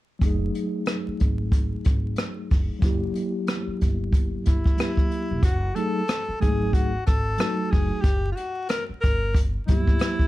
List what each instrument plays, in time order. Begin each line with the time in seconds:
0.19 upright bass F#1, tine electric piano F#3 A3, kick, closed hi-hat
0.24 tine electric piano D#4 G#4
0.55 closed hi-hat
0.86 cross-stick, closed hi-hat
1.07 muted upright bass stroke
1.20 upright bass G#1, kick, closed hi-hat
1.52 kick, closed hi-hat
1.85 upright bass G#1, kick, closed hi-hat
2.16 cross-stick, closed hi-hat
2.50 upright bass F#1, kick, open hi-hat
2.79 upright bass F#1, tine electric piano F#3 A#3, kick, closed hi-hat
2.83 tine electric piano E4 G4
3.15 closed hi-hat
3.47 cross-stick, closed hi-hat
3.67 muted upright bass stroke
3.81 upright bass G1, kick, closed hi-hat
4.13 kick, closed hi-hat
4.46 upright bass G1, alto saxophone E4, kick, closed hi-hat
4.65 kick
4.77 tine electric piano F#3 A#3 E4 G4, cross-stick, closed hi-hat
4.97 kick
5.11 closed hi-hat
5.31 upright bass E1
5.43 upright bass F#1, alto saxophone F#4, kick, closed hi-hat
5.75 tine electric piano F#3 A3 D#4 G#4, alto saxophone A4, closed hi-hat
6.08 cross-stick, closed hi-hat
6.28 muted upright bass stroke
6.40 upright bass G#1, tine electric piano F#3 G#3 D#4 G#4, alto saxophone G#4, kick, closed hi-hat
6.48 tine electric piano A3
6.73 alto saxophone F#4, kick, closed hi-hat
7.06 upright bass G#1, alto saxophone A4, kick, cross-stick, closed hi-hat
7.38 tine electric piano F#3 A3 D#4 F#4, cross-stick, closed hi-hat
7.71 upright bass F#1, alto saxophone G#4, kick, open hi-hat
8.01 upright bass F#1, alto saxophone G4, kick, closed hi-hat
8.32 alto saxophone F4
8.36 alto saxophone F#4, closed hi-hat
8.69 alto saxophone A#4, cross-stick, closed hi-hat
8.89 muted upright bass stroke
9.01 upright bass G1, alto saxophone A#4, kick, closed hi-hat
9.35 kick, closed hi-hat
9.67 upright bass G1, tine electric piano F#3 A#3 E4 G4, alto saxophone E4, kick, closed hi-hat
9.87 kick
9.99 cross-stick, closed hi-hat
10.19 kick